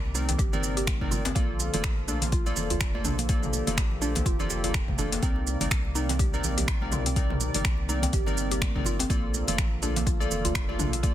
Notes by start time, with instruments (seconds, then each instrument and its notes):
Already playing: sub bass C2, analog synth pad C3 D#3 G3 A#3 D5
0.05 muted conga
0.15 synth keys C4 D#4 A#4 D5, synth pluck D#4, djembe tone, high conga, shaker
0.29 synth pluck C4, closed hi-hat, djembe slap, low conga, djembe bass, shaker
0.39 sub bass G1, synth pluck G4, kick, closed hi-hat, djembe tone, shaker
0.53 synth keys C4 D#4 A#4 D5, muted conga, low conga, shaker
0.63 shaker
0.77 synth pluck G4, closed hi-hat, djembe tone, shaker
0.87 finger snap, kick, closed hi-hat, muted conga, high conga, shaker
1.01 synth keys C4 D#4 A#4 D5, kick, mid tom, high conga, djembe tone
1.11 synth pluck F4, high conga, low conga, shaker
1.25 synth pluck C4, closed hi-hat, djembe slap, muted conga, djembe tone, shaker
1.35 sub bass A#1, analog synth pad D3 F3 F4 A4, synth pluck A#3, synth keys A#3 F4 A4 D5, kick, closed hi-hat, shaker
1.60 muted conga, djembe tone, shaker
1.74 sub bass F1, synth keys A#3 F4 A4 D5, closed hi-hat, high conga, low conga, shaker
1.84 sub bass A#1, finger snap, kick, closed hi-hat, djembe tone, shaker
1.99 muted conga
2.08 synth keys A#3 F4 A4 D5, synth pluck D4, high conga, djembe tone, shaker
2.22 synth pluck A#3, closed hi-hat, djembe slap, low conga, shaker
2.32 synth pluck F4, kick, closed hi-hat, high conga, shaker
2.46 synth keys A#3 F4 A4 D5, muted conga, djembe tone, shaker
2.56 sub bass F1, low conga, shaker
2.70 synth pluck F4, closed hi-hat, high conga, djembe tone, low conga, djembe bass, shaker
2.81 finger snap, kick, closed hi-hat, shaker
2.95 synth keys A#3 F4 A4 D5, djembe tone, high conga
3.05 sub bass A#1, synth pluck D4, mid tom, djembe bass, shaker
3.18 synth pluck A#3, closed hi-hat, muted conga, shaker
3.29 synth keys A#3 F4 A4 D5, synth pluck A#3, analog synth pad G4, kick, closed hi-hat, djembe tone, shaker
3.43 mid tom, shaker
3.53 muted conga, djembe tone, shaker
3.67 sub bass F1, synth keys A#3 F4 A4 D5, closed hi-hat, high conga, low conga, shaker
3.77 sub bass A#1, finger snap, kick, closed hi-hat, djembe tone, shaker
3.91 muted conga
4.01 synth keys A#3 F4 A4 D5, synth pluck D4, high conga, shaker
4.15 synth pluck A#3, closed hi-hat, djembe slap, djembe tone, djembe bass, low conga, shaker
4.26 sub bass F1, synth pluck F4, kick, closed hi-hat, shaker
4.39 synth keys A#3 F4 A4 D5, muted conga, djembe tone, low conga, shaker
4.50 djembe slap, shaker
4.64 synth keys A#3 F4 A4 D5, synth pluck F4, closed hi-hat, djembe tone, shaker
4.74 finger snap, kick, closed hi-hat, muted conga, high conga, shaker
4.88 kick, mid tom, high conga
4.98 synth keys A#3 F4 A4 D5, synth pluck D4, djembe tone, high conga, low conga, shaker
5.12 synth pluck A#3, closed hi-hat, muted conga, djembe slap, shaker
5.23 sub bass C2, analog synth pad C3 D#3 G3 D5, synth keys C4 D#4 A#4 D5, synth pluck C4, kick, closed hi-hat, shaker
5.36 djembe tone
5.47 muted conga, shaker
5.61 sub bass G1, synth keys C4 D#4 A#4 D5, closed hi-hat, high conga, djembe tone, low conga, shaker
5.71 sub bass C2, finger snap, kick, closed hi-hat, shaker
5.85 muted conga
5.95 synth keys C4 D#4 A#4 D5, synth pluck D#4, high conga, djembe tone, shaker
6.09 synth pluck C4, closed hi-hat, djembe slap, low conga, shaker
6.19 synth pluck G4, kick, closed hi-hat, high conga, djembe tone, shaker
6.34 synth keys C4 D#4 A#4 D5, muted conga, shaker
6.44 sub bass A#1, djembe tone, low conga, shaker
6.57 synth pluck G4, closed hi-hat, high conga, djembe bass, low conga, shaker
6.68 finger snap, kick, closed hi-hat, muted conga, shaker
6.82 synth keys C4 D#4 A#4 D5, high conga, djembe tone
6.92 sub bass C2, synth pluck F4, mid tom, djembe bass, shaker
7.06 synth pluck C4, closed hi-hat, muted conga, djembe tone, shaker
7.16 synth pluck C4, synth keys C4 D#4 A#4 D5, kick, closed hi-hat, shaker
7.30 mid tom, djembe tone
7.40 muted conga, shaker
7.54 sub bass G1, synth keys C4 D#4 A#4 D5, closed hi-hat, high conga, low conga, shaker
7.65 sub bass C2, finger snap, kick, closed hi-hat, djembe tone, shaker
7.78 muted conga
7.89 synth keys C4 D#4 A#4 D5, synth pluck D#4, djembe tone, high conga, shaker
8.02 synth pluck C4, closed hi-hat, djembe slap, low conga, djembe bass, shaker
8.13 sub bass G1, synth pluck G4, kick, closed hi-hat, djembe tone, shaker
8.26 synth keys C4 D#4 A#4 D5, muted conga, low conga, shaker
8.37 shaker
8.51 synth pluck G4, closed hi-hat, djembe tone, shaker
8.62 finger snap, kick, closed hi-hat, muted conga, high conga, shaker
8.75 synth keys C4 D#4 A#4 D5, kick, mid tom, high conga, djembe tone
8.85 synth pluck F4, high conga, low conga, shaker
8.99 synth pluck C4, closed hi-hat, djembe slap, muted conga, djembe tone, shaker
9.10 sub bass A#1, analog synth pad D3 F3 A#3 F4 A4, synth keys A#3 F4 A4 D5, synth pluck A#3, kick, closed hi-hat, shaker
9.34 muted conga, djembe tone, shaker
9.48 sub bass F1, synth keys A#3 F4 A4 D5, closed hi-hat, high conga, low conga, shaker
9.58 sub bass A#1, finger snap, kick, closed hi-hat, djembe tone, shaker
9.72 muted conga
9.82 synth keys A#3 F4 A4 D5, synth pluck D4, high conga, djembe tone, shaker
9.96 synth pluck A#3, closed hi-hat, djembe slap, low conga, shaker
10.07 synth pluck F4, kick, closed hi-hat, high conga, shaker
10.20 synth keys A#3 F4 A4 D5, muted conga, djembe tone, shaker
10.31 sub bass F1, low conga, shaker
10.45 synth pluck F4, closed hi-hat, high conga, djembe tone, low conga, djembe bass, shaker
10.55 finger snap, kick, closed hi-hat, muted conga, shaker
10.69 synth keys A#3 F4 A4 D5, high conga, djembe tone
10.79 sub bass A#1, synth pluck D4, mid tom, djembe bass, shaker
10.93 synth pluck A#3, closed hi-hat, muted conga, shaker
11.03 synth pluck A#3, synth keys A#3 F4 A4 D5, kick, closed hi-hat, djembe tone, shaker